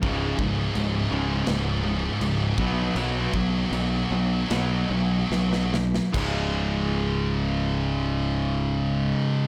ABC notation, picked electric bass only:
X:1
M:4/4
L:1/8
Q:1/4=76
K:Bmix
V:1 name="Picked electric bass" clef=bass
C,,, C,,, C,,, C,,, C,,,2 C,,, B,,, | B,,, B,,, B,,, B,,, B,,, B,,, B,,,2 | C,,,8 |]